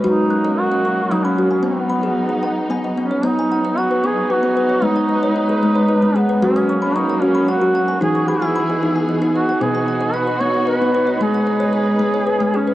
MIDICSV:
0, 0, Header, 1, 4, 480
1, 0, Start_track
1, 0, Key_signature, 5, "major"
1, 0, Tempo, 531915
1, 36, Time_signature, 3, 2, 24, 8
1, 11497, End_track
2, 0, Start_track
2, 0, Title_t, "Kalimba"
2, 0, Program_c, 0, 108
2, 0, Note_on_c, 0, 71, 53
2, 37, Note_on_c, 0, 54, 79
2, 40, Note_on_c, 0, 66, 71
2, 163, Note_off_c, 0, 71, 0
2, 274, Note_on_c, 0, 90, 54
2, 279, Note_off_c, 0, 66, 0
2, 402, Note_on_c, 0, 75, 64
2, 634, Note_off_c, 0, 75, 0
2, 638, Note_off_c, 0, 90, 0
2, 645, Note_on_c, 0, 75, 59
2, 765, Note_on_c, 0, 85, 53
2, 883, Note_off_c, 0, 75, 0
2, 964, Note_off_c, 0, 54, 0
2, 1003, Note_on_c, 0, 87, 64
2, 1007, Note_on_c, 0, 54, 75
2, 1124, Note_off_c, 0, 85, 0
2, 1124, Note_on_c, 0, 83, 51
2, 1242, Note_off_c, 0, 87, 0
2, 1247, Note_on_c, 0, 66, 62
2, 1358, Note_on_c, 0, 80, 48
2, 1450, Note_off_c, 0, 54, 0
2, 1468, Note_on_c, 0, 59, 72
2, 1483, Note_off_c, 0, 83, 0
2, 1484, Note_off_c, 0, 66, 0
2, 1600, Note_off_c, 0, 80, 0
2, 1711, Note_on_c, 0, 83, 54
2, 1715, Note_off_c, 0, 59, 0
2, 1834, Note_on_c, 0, 68, 61
2, 2055, Note_off_c, 0, 68, 0
2, 2066, Note_on_c, 0, 68, 58
2, 2078, Note_off_c, 0, 83, 0
2, 2190, Note_on_c, 0, 78, 52
2, 2315, Note_off_c, 0, 68, 0
2, 2435, Note_on_c, 0, 59, 73
2, 2441, Note_on_c, 0, 80, 63
2, 2557, Note_off_c, 0, 78, 0
2, 2564, Note_on_c, 0, 75, 56
2, 2672, Note_off_c, 0, 59, 0
2, 2682, Note_off_c, 0, 80, 0
2, 2683, Note_on_c, 0, 59, 62
2, 2805, Note_on_c, 0, 73, 51
2, 2906, Note_off_c, 0, 59, 0
2, 2916, Note_on_c, 0, 59, 92
2, 2924, Note_off_c, 0, 75, 0
2, 3044, Note_off_c, 0, 73, 0
2, 3057, Note_on_c, 0, 80, 53
2, 3142, Note_off_c, 0, 59, 0
2, 3173, Note_on_c, 0, 78, 58
2, 3291, Note_on_c, 0, 75, 73
2, 3398, Note_off_c, 0, 78, 0
2, 3409, Note_on_c, 0, 78, 56
2, 3410, Note_off_c, 0, 80, 0
2, 3527, Note_off_c, 0, 75, 0
2, 3529, Note_on_c, 0, 71, 51
2, 3644, Note_on_c, 0, 59, 67
2, 3767, Note_off_c, 0, 78, 0
2, 3870, Note_off_c, 0, 71, 0
2, 3881, Note_on_c, 0, 71, 59
2, 3884, Note_off_c, 0, 59, 0
2, 3997, Note_on_c, 0, 59, 70
2, 4112, Note_off_c, 0, 71, 0
2, 4122, Note_on_c, 0, 71, 60
2, 4236, Note_on_c, 0, 73, 53
2, 4240, Note_off_c, 0, 59, 0
2, 4351, Note_on_c, 0, 56, 76
2, 4476, Note_on_c, 0, 78, 57
2, 4480, Note_off_c, 0, 73, 0
2, 4483, Note_off_c, 0, 71, 0
2, 4594, Note_on_c, 0, 75, 59
2, 4597, Note_off_c, 0, 56, 0
2, 4719, Note_on_c, 0, 73, 72
2, 4825, Note_off_c, 0, 75, 0
2, 4836, Note_on_c, 0, 75, 58
2, 4839, Note_off_c, 0, 78, 0
2, 4958, Note_on_c, 0, 68, 52
2, 4961, Note_off_c, 0, 73, 0
2, 5081, Note_on_c, 0, 56, 70
2, 5195, Note_on_c, 0, 73, 57
2, 5200, Note_off_c, 0, 75, 0
2, 5313, Note_on_c, 0, 71, 64
2, 5320, Note_off_c, 0, 68, 0
2, 5322, Note_off_c, 0, 56, 0
2, 5437, Note_on_c, 0, 56, 69
2, 5557, Note_on_c, 0, 68, 62
2, 5558, Note_off_c, 0, 73, 0
2, 5667, Note_off_c, 0, 71, 0
2, 5677, Note_on_c, 0, 71, 57
2, 5680, Note_off_c, 0, 56, 0
2, 5796, Note_on_c, 0, 54, 95
2, 5796, Note_on_c, 0, 66, 75
2, 5919, Note_on_c, 0, 87, 60
2, 5920, Note_off_c, 0, 68, 0
2, 5920, Note_off_c, 0, 71, 0
2, 6021, Note_off_c, 0, 54, 0
2, 6039, Note_off_c, 0, 66, 0
2, 6039, Note_on_c, 0, 85, 61
2, 6154, Note_on_c, 0, 83, 66
2, 6267, Note_off_c, 0, 85, 0
2, 6278, Note_on_c, 0, 85, 60
2, 6280, Note_off_c, 0, 87, 0
2, 6398, Note_off_c, 0, 83, 0
2, 6403, Note_on_c, 0, 78, 54
2, 6514, Note_on_c, 0, 66, 69
2, 6630, Note_on_c, 0, 83, 57
2, 6640, Note_off_c, 0, 85, 0
2, 6742, Note_off_c, 0, 78, 0
2, 6753, Note_on_c, 0, 78, 59
2, 6758, Note_off_c, 0, 66, 0
2, 6872, Note_on_c, 0, 66, 72
2, 6982, Note_off_c, 0, 78, 0
2, 6993, Note_on_c, 0, 78, 60
2, 6995, Note_off_c, 0, 83, 0
2, 7111, Note_on_c, 0, 80, 55
2, 7117, Note_off_c, 0, 66, 0
2, 7227, Note_on_c, 0, 63, 72
2, 7237, Note_on_c, 0, 52, 90
2, 7354, Note_on_c, 0, 85, 58
2, 7357, Note_off_c, 0, 80, 0
2, 7358, Note_off_c, 0, 78, 0
2, 7461, Note_off_c, 0, 52, 0
2, 7472, Note_on_c, 0, 83, 57
2, 7474, Note_off_c, 0, 63, 0
2, 7597, Note_on_c, 0, 80, 69
2, 7708, Note_off_c, 0, 83, 0
2, 7717, Note_off_c, 0, 85, 0
2, 7719, Note_on_c, 0, 83, 58
2, 7839, Note_off_c, 0, 80, 0
2, 7846, Note_on_c, 0, 75, 51
2, 7964, Note_on_c, 0, 63, 65
2, 8080, Note_off_c, 0, 83, 0
2, 8080, Note_on_c, 0, 80, 53
2, 8188, Note_off_c, 0, 75, 0
2, 8198, Note_on_c, 0, 75, 56
2, 8202, Note_off_c, 0, 63, 0
2, 8316, Note_on_c, 0, 63, 73
2, 8430, Note_off_c, 0, 75, 0
2, 8439, Note_off_c, 0, 80, 0
2, 8441, Note_on_c, 0, 75, 57
2, 8558, Note_off_c, 0, 63, 0
2, 8562, Note_on_c, 0, 78, 58
2, 8674, Note_on_c, 0, 47, 84
2, 8675, Note_on_c, 0, 59, 73
2, 8796, Note_on_c, 0, 80, 57
2, 8801, Note_off_c, 0, 75, 0
2, 8801, Note_off_c, 0, 78, 0
2, 8899, Note_off_c, 0, 47, 0
2, 8917, Note_off_c, 0, 59, 0
2, 8917, Note_on_c, 0, 78, 57
2, 9031, Note_on_c, 0, 75, 69
2, 9138, Note_off_c, 0, 78, 0
2, 9148, Note_on_c, 0, 78, 57
2, 9157, Note_off_c, 0, 80, 0
2, 9272, Note_on_c, 0, 71, 53
2, 9275, Note_off_c, 0, 75, 0
2, 9393, Note_on_c, 0, 59, 68
2, 9514, Note_off_c, 0, 78, 0
2, 9514, Note_on_c, 0, 75, 54
2, 9617, Note_off_c, 0, 71, 0
2, 9628, Note_on_c, 0, 71, 60
2, 9636, Note_off_c, 0, 59, 0
2, 9762, Note_on_c, 0, 59, 69
2, 9866, Note_off_c, 0, 71, 0
2, 9876, Note_off_c, 0, 75, 0
2, 9876, Note_on_c, 0, 71, 62
2, 9990, Note_on_c, 0, 73, 57
2, 10000, Note_off_c, 0, 59, 0
2, 10115, Note_on_c, 0, 56, 75
2, 10234, Note_off_c, 0, 73, 0
2, 10237, Note_on_c, 0, 78, 53
2, 10238, Note_off_c, 0, 71, 0
2, 10350, Note_on_c, 0, 75, 58
2, 10356, Note_off_c, 0, 56, 0
2, 10470, Note_on_c, 0, 73, 74
2, 10575, Note_off_c, 0, 75, 0
2, 10585, Note_on_c, 0, 75, 58
2, 10597, Note_off_c, 0, 78, 0
2, 10714, Note_off_c, 0, 73, 0
2, 10823, Note_on_c, 0, 56, 68
2, 10952, Note_off_c, 0, 75, 0
2, 10953, Note_on_c, 0, 73, 54
2, 11069, Note_on_c, 0, 71, 62
2, 11070, Note_off_c, 0, 56, 0
2, 11191, Note_on_c, 0, 56, 77
2, 11314, Note_off_c, 0, 73, 0
2, 11314, Note_on_c, 0, 68, 61
2, 11425, Note_off_c, 0, 71, 0
2, 11434, Note_off_c, 0, 56, 0
2, 11435, Note_on_c, 0, 71, 60
2, 11497, Note_off_c, 0, 68, 0
2, 11497, Note_off_c, 0, 71, 0
2, 11497, End_track
3, 0, Start_track
3, 0, Title_t, "Duduk"
3, 0, Program_c, 1, 69
3, 57, Note_on_c, 1, 63, 85
3, 528, Note_on_c, 1, 66, 85
3, 541, Note_off_c, 1, 63, 0
3, 1011, Note_on_c, 1, 63, 76
3, 1024, Note_off_c, 1, 66, 0
3, 1119, Note_on_c, 1, 61, 69
3, 1132, Note_off_c, 1, 63, 0
3, 1358, Note_off_c, 1, 61, 0
3, 1363, Note_on_c, 1, 61, 63
3, 1487, Note_on_c, 1, 59, 67
3, 1500, Note_off_c, 1, 61, 0
3, 2446, Note_off_c, 1, 59, 0
3, 2711, Note_on_c, 1, 61, 72
3, 2940, Note_on_c, 1, 63, 83
3, 2953, Note_off_c, 1, 61, 0
3, 3417, Note_on_c, 1, 66, 81
3, 3431, Note_off_c, 1, 63, 0
3, 3669, Note_on_c, 1, 68, 84
3, 3683, Note_off_c, 1, 66, 0
3, 3899, Note_on_c, 1, 66, 88
3, 3912, Note_off_c, 1, 68, 0
3, 4377, Note_on_c, 1, 63, 84
3, 4391, Note_off_c, 1, 66, 0
3, 4842, Note_off_c, 1, 63, 0
3, 4847, Note_on_c, 1, 63, 77
3, 5573, Note_on_c, 1, 59, 73
3, 5587, Note_off_c, 1, 63, 0
3, 5800, Note_on_c, 1, 61, 85
3, 5813, Note_off_c, 1, 59, 0
3, 6277, Note_on_c, 1, 63, 82
3, 6291, Note_off_c, 1, 61, 0
3, 6515, Note_on_c, 1, 61, 73
3, 6529, Note_off_c, 1, 63, 0
3, 6769, Note_on_c, 1, 66, 85
3, 6782, Note_off_c, 1, 61, 0
3, 7226, Note_off_c, 1, 66, 0
3, 7232, Note_on_c, 1, 68, 87
3, 7478, Note_on_c, 1, 64, 74
3, 7491, Note_off_c, 1, 68, 0
3, 8197, Note_off_c, 1, 64, 0
3, 8437, Note_on_c, 1, 66, 81
3, 8676, Note_on_c, 1, 68, 87
3, 8690, Note_off_c, 1, 66, 0
3, 9151, Note_on_c, 1, 71, 83
3, 9164, Note_off_c, 1, 68, 0
3, 9397, Note_on_c, 1, 73, 84
3, 9410, Note_off_c, 1, 71, 0
3, 9633, Note_off_c, 1, 73, 0
3, 9638, Note_on_c, 1, 71, 93
3, 10084, Note_off_c, 1, 71, 0
3, 10127, Note_on_c, 1, 68, 86
3, 10569, Note_off_c, 1, 68, 0
3, 10596, Note_on_c, 1, 68, 85
3, 11331, Note_on_c, 1, 61, 75
3, 11345, Note_off_c, 1, 68, 0
3, 11497, Note_off_c, 1, 61, 0
3, 11497, End_track
4, 0, Start_track
4, 0, Title_t, "String section"
4, 0, Program_c, 2, 48
4, 49, Note_on_c, 2, 58, 69
4, 52, Note_on_c, 2, 61, 64
4, 54, Note_on_c, 2, 54, 66
4, 1473, Note_off_c, 2, 58, 0
4, 1474, Note_off_c, 2, 61, 0
4, 1487, Note_on_c, 2, 59, 54
4, 1491, Note_on_c, 2, 63, 70
4, 2903, Note_off_c, 2, 54, 0
4, 2912, Note_off_c, 2, 59, 0
4, 2914, Note_off_c, 2, 63, 0
4, 2921, Note_on_c, 2, 54, 66
4, 2926, Note_on_c, 2, 59, 64
4, 2931, Note_on_c, 2, 63, 72
4, 4348, Note_off_c, 2, 54, 0
4, 4350, Note_off_c, 2, 59, 0
4, 4374, Note_on_c, 2, 56, 66
4, 4375, Note_on_c, 2, 71, 78
4, 5778, Note_off_c, 2, 63, 0
4, 5793, Note_off_c, 2, 56, 0
4, 5794, Note_off_c, 2, 71, 0
4, 5804, Note_on_c, 2, 58, 76
4, 5807, Note_on_c, 2, 61, 65
4, 5808, Note_on_c, 2, 54, 68
4, 7225, Note_on_c, 2, 52, 68
4, 7228, Note_off_c, 2, 58, 0
4, 7229, Note_off_c, 2, 54, 0
4, 7229, Note_off_c, 2, 61, 0
4, 7231, Note_on_c, 2, 68, 74
4, 7233, Note_on_c, 2, 59, 67
4, 8657, Note_off_c, 2, 52, 0
4, 8660, Note_off_c, 2, 68, 0
4, 8677, Note_on_c, 2, 66, 76
4, 8679, Note_on_c, 2, 63, 65
4, 10085, Note_off_c, 2, 59, 0
4, 10102, Note_off_c, 2, 66, 0
4, 10113, Note_on_c, 2, 71, 77
4, 10123, Note_on_c, 2, 56, 66
4, 11497, Note_off_c, 2, 56, 0
4, 11497, Note_off_c, 2, 63, 0
4, 11497, Note_off_c, 2, 71, 0
4, 11497, End_track
0, 0, End_of_file